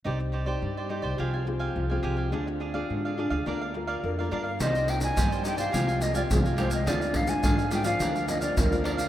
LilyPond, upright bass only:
\new Staff \with { instrumentName = "Upright bass" } { \clef bass \time 4/4 \key c \minor \tempo 4 = 106 c,4 g,8. c,16 c,4 c,8 c,8 | d,4 aes,8. d,16 d,4 f,8 g,8 | c,4 g,4 c,4 c,4 | d,4 aes,4 d,4 d,4 | }